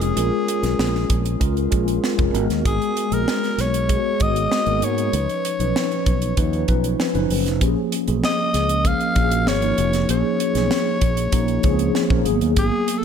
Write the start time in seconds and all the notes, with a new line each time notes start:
Already playing: F1 G#3 B3 C#4 F4 G#4 A#4 C#5
0.01 G#4, closed hi-hat
0.15 A#1 G#3 C#4 F4 A#4, closed hi-hat
0.48 closed hi-hat
0.62 B1 G#3 C#4 F4 A#4, snare, closed hi-hat
0.79 A#1, snare
0.95 snare
1.10 A#1, kick, closed hi-hat
1.25 closed hi-hat
1.40 C#2 G#3 C#4 F4 A#4, kick, closed hi-hat
1.57 closed hi-hat
1.71 A#1 G#3 C#4 F4 G#4, kick, closed hi-hat
1.88 closed hi-hat
2.04 snare
2.17 F1 G#3 C#4 F4 A#4, kick, closed hi-hat
2.33 G#1 G#3 B3 F#4 A#4, closed hi-hat
2.49 D#2, snare, closed hi-hat
2.65 G#1 G#4, kick, closed hi-hat
2.82 closed hi-hat
2.97 closed hi-hat
3.10 A#1 G#3 B3 F#4 G#4 A#4, closed hi-hat
3.28 snare
3.44 snare, closed hi-hat
3.58 B1 C#5, snare, closed hi-hat
3.74 closed hi-hat
3.88 G#3 B3 F#4 G#4, kick, closed hi-hat
4.19 G#1 G#3 B3 F#4 A#4 D#5, kick, closed hi-hat
4.36 closed hi-hat
4.52 snare
4.66 G#1 G#3 A#3 F#4 A#4, closed hi-hat
4.73 B3
4.82 G#2 C#5, closed hi-hat
4.98 closed hi-hat
5.12 C#2 E3 C#4 D#4 B4, closed hi-hat
5.19 F3
5.29 closed hi-hat
5.45 closed hi-hat
5.59 B1 F3 C#4 D#4 B4, closed hi-hat
5.76 snare
5.92 closed hi-hat
6.06 B1, kick, closed hi-hat
6.22 closed hi-hat
6.37 D#2 F3 C#4 D#4 B4, kick, closed hi-hat
6.53 closed hi-hat
6.68 B1 F3 C#4 D#4 B4, kick, closed hi-hat
6.84 closed hi-hat
7.00 snare
7.13 F#1 F3 C#4 D#4 B4, closed hi-hat
7.30 F#1, open hi-hat
7.46 F1, snare, closed hi-hat
7.60 A#1 F3 A#3 C#4 G4, kick, closed hi-hat
7.68 G#4
7.92 closed hi-hat
8.07 B1 F3 A#3 C#4 G#4, closed hi-hat
8.24 D#5, snare
8.54 C#2, snare, closed hi-hat
8.69 closed hi-hat
8.84 F3 A#3 C#4 A#4 F5, kick, closed hi-hat
9.00 closed hi-hat
9.16 A#1 F3 A#3 C#4 F#4, kick, closed hi-hat
9.24 G#4
9.31 closed hi-hat
9.47 G#1 C#5, snare
9.62 F3 A#3 C#4 D#4, closed hi-hat
9.78 F1, closed hi-hat
9.93 snare, closed hi-hat
10.09 A#1 F3 A#3 C#4 G#4 C#5, closed hi-hat
10.40 closed hi-hat
10.55 B1 F3 A#3 C#4 G#4, snare, closed hi-hat
10.71 snare
11.01 A#1, kick, closed hi-hat
11.17 closed hi-hat
11.32 A#1 F3 A#3 C#4 D#4, kick, closed hi-hat
11.48 closed hi-hat
11.63 C#2 F3 A#3 C4 G#4, kick, closed hi-hat
11.71 C#4
11.79 closed hi-hat
11.95 snare
12.10 A#1 F3 A#3 C#4 A#4, kick
12.25 G#1 F#3 A#3 B3 G#4, closed hi-hat
12.41 D#2, closed hi-hat
12.56 G#1 G#4, kick, closed hi-hat
12.88 closed hi-hat
12.98 A4